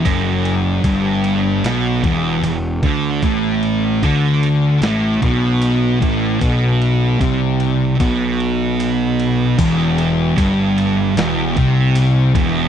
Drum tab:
CC |--------|--------|--------|x-------|
RD |xxxxxxxx|xxxxxxxx|xxxxxxxx|xxxxxxxx|
SD |----oo--|----oo--|--------|----o---|
BD |o-o--o-o|o-o--o-o|o-o-o---|o-o--o-o|